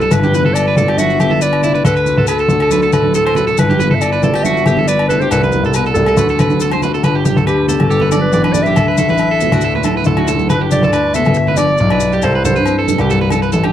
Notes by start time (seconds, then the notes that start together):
Already playing: E3 G3 E4 A4
0.01 A4, maracas
0.10 G1 G2 E4 B4, low agogo, maracas
0.23 G4, high conga, maracas
0.33 B3 B4, high conga, low conga, maracas
0.45 G1 A4
0.54 E4 D5, low agogo, maracas
0.68 B4
0.76 G1 D3 A4, muted nylon-string guitar stroke, low conga, maracas
0.88 G4, low agogo
0.98 E4 F#4 E5, high conga, maracas
1.10 maracas
1.20 G1 D3 B3 G4, low agogo, maracas
1.30 A4, high conga
1.41 B4 D5, maracas
1.53 low agogo
1.62 E4, low conga, maracas
1.75 B4, maracas
1.85 D2 D3 A4 B4, low agogo, maracas
1.96 B4, maracas
2.06 F#4, low conga, maracas
2.18 D2 A4
2.27 F#4 A4 B4, low agogo, maracas
2.39 A4, maracas
2.48 D2 D4, low conga, maracas
2.53 F#4
2.60 A4, low agogo
2.71 F#4 B4, high conga, maracas
2.82 A4, maracas
2.93 D2 A2 F#4 B4, low agogo, maracas
3.03 high conga
3.14 E3 A4, maracas
3.26 C5, low agogo
3.35 F#3 B4, low conga, maracas
3.47 A4, maracas
3.57 G1 G2 E4 B4, low agogo, maracas
3.69 G4, high conga, maracas
3.79 B3 B4, high conga, low conga, maracas
3.91 G1 A4
3.95 E5
4.01 E4 D5, low agogo, maracas
4.12 B4, maracas
4.23 G1 D3 E4 A4, low conga, maracas
4.34 G4, low agogo
4.43 E4 F#4 E5, high conga, maracas
4.57 maracas
4.66 G1 D3 B3 G4, low agogo, maracas
4.77 A4, high conga
4.88 B4 D5, maracas
4.99 low agogo
5.08 E4 A4 B4, low conga, maracas
5.20 G4 C5, maracas
5.31 C2 C3 E4 A4 B4, low agogo, maracas
5.42 B4, high conga, maracas
5.52 G3, high conga, low conga, maracas
5.63 C2 A4, maracas
5.74 B2 B4, low agogo, maracas
5.86 A4, maracas
5.94 C2 C3 A4, low conga, maracas
6.06 A4, low agogo, maracas
6.17 D2 D3 F#4 B4, high conga, maracas
6.29 A4, maracas
6.38 D2 C4 B4, low conga, low agogo, maracas
6.50 high conga, maracas
6.60 F#4 A4, maracas
6.71 C5, high conga, low agogo, maracas
6.82 A3 F#4 B4, low conga, maracas
6.94 A4, maracas
7.04 G1 G2 B4, low agogo, maracas
7.15 G4
7.25 G1 D3 G4, high conga, maracas
7.36 D2 A4, maracas
7.46 D4 G4 B4, low agogo, maracas
7.68 B3 A4, low conga, maracas
7.80 G1, low agogo
7.89 G2 G4 A4, maracas
8.00 B4, low conga
8.12 D4 D5, high conga, low agogo, maracas
8.21 B4
8.32 A1 B2 D5, maracas
8.44 B4, high conga, low agogo
8.53 C3 D5, low conga, maracas
8.63 E5, high conga, maracas
8.67 G4
8.76 D2 D3 A4, low agogo, maracas
8.88 B4
8.97 D2 A3 A4, high conga, maracas
9.08 A1 B4, maracas
9.18 E4, low agogo, maracas
9.31 A4
9.40 B3, low conga, maracas
9.52 D2 D4 F#4, low agogo, maracas
9.61 A2 A4, maracas
9.75 B4, low conga
9.83 E4 A4, high conga, low agogo, maracas
9.97 B4
10.04 D2 E4 A4, maracas
10.17 F#4, high conga, low agogo
10.26 E4 A4, low conga, maracas
10.39 high conga, maracas
10.47 G1 G2 B4, low agogo, maracas
10.61 G4
10.70 G1 D3 G4 D5, high conga, maracas
10.83 D2 A4, maracas
10.92 D4 B4, low agogo, maracas
11.14 B3 A4 E5, low conga, maracas
11.25 G1, low agogo, maracas
11.34 G2, muted clean electric guitar stroke, maracas
11.47 B4, low conga
11.57 D4 D5, high conga, low agogo, maracas
11.78 B1 E4 D5, maracas
11.90 B4, high conga, low agogo
12.00 D4, maracas
12.12 G4, maracas
12.22 C2 C3 A4 C5, low agogo, maracas
12.35 B4
12.44 C2 E3 A4 C5, high conga, maracas
12.56 G2 B4, maracas
12.66 C4, low agogo, maracas
12.79 A4
12.88 G3, high conga, low conga, maracas
12.98 C2 G4, low agogo, maracas
13.10 G2 A4, maracas
13.21 B4, low conga
13.30 A4, high conga, low agogo, maracas
13.42 B4, maracas
13.52 A1 E4 A4, maracas
13.64 G4, high conga, low agogo